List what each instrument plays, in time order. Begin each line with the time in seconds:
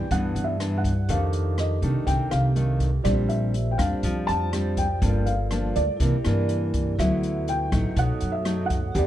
Already playing: vibraphone E4 G4 B4 D5, felt piano G5
0.11 nylon-string guitar G2 E3 B3 D4, upright bass G2, felt piano F#5, kick, closed hi-hat
0.35 upright bass G2, closed hi-hat
0.44 felt piano E5
0.60 nylon-string guitar E3 B3 D4, cross-stick, closed hi-hat
0.78 felt piano F#5
0.84 kick, closed hi-hat
1.07 nylon-string guitar F2 D#3 A3 D4, upright bass F2, vibraphone G4 A4, felt piano F5, kick, closed hi-hat
1.12 vibraphone D6
1.33 closed hi-hat
1.58 felt piano D#5, cross-stick, closed hi-hat
1.82 upright bass C2, nylon-string guitar D#3 A3 D4, closed hi-hat
2.07 upright bass C2, nylon-string guitar C3, felt piano G5, kick, closed hi-hat
2.31 upright bass C2, felt piano F5, cross-stick, closed hi-hat
2.56 nylon-string guitar D#3 A3 D4, closed hi-hat
2.80 kick, closed hi-hat
3.02 upright bass A#1, nylon-string guitar A#2 G3 C4 D4, vibraphone F4 G4 C5, felt piano D5, kick, cross-stick, closed hi-hat
3.08 vibraphone D5
3.29 felt piano E5, closed hi-hat
3.54 closed hi-hat
3.71 felt piano G5
3.78 upright bass F2, nylon-string guitar G3 C4 D4, felt piano F5, kick, cross-stick, closed hi-hat
4.03 upright bass F2, nylon-string guitar F3, kick, closed hi-hat
4.27 upright bass F2, vibraphone G4 C5 D5, felt piano A5, closed hi-hat
4.53 nylon-string guitar G3 C4 D4, cross-stick, closed hi-hat
4.77 felt piano G5, kick, closed hi-hat
4.99 upright bass G1, nylon-string guitar G2 F3 A#3, vibraphone F4 A4, kick, closed hi-hat
5.03 nylon-string guitar D4, vibraphone A#4 D5
5.26 felt piano F5, closed hi-hat
5.51 nylon-string guitar F3 A#3 D4, cross-stick, closed hi-hat
5.76 upright bass D2, felt piano D5, closed hi-hat
5.97 upright bass C2, nylon-string guitar C3 E3 A#3, vibraphone E4 G4 A#4, kick, closed hi-hat
6.01 nylon-string guitar D4, vibraphone D5
6.24 upright bass G2, nylon-string guitar E3 A#3 D4, cross-stick, closed hi-hat
6.49 closed hi-hat
6.74 kick, closed hi-hat
6.95 upright bass D2, nylon-string guitar D3, vibraphone E4 A4 B4, felt piano E5, kick, cross-stick, closed hi-hat
7.00 nylon-string guitar F#3 B3 E4, vibraphone E5
7.23 closed hi-hat
7.48 felt piano G5, closed hi-hat
7.72 upright bass A1, nylon-string guitar F#3 A3 D#4, kick, cross-stick, closed hi-hat
7.94 upright bass B1, nylon-string guitar B2, vibraphone F#4 A4, kick, closed hi-hat
7.98 vibraphone C#5 D#6, felt piano F#5
8.21 upright bass F#2, closed hi-hat
8.32 felt piano E5
8.45 nylon-string guitar F#3 A3 D#4, cross-stick, closed hi-hat
8.66 felt piano F#5
8.70 kick, closed hi-hat
8.92 upright bass E2, nylon-string guitar E3 B3 D4 G4, vibraphone G4 B4 D5, kick, closed hi-hat
8.98 felt piano D5, vibraphone F#5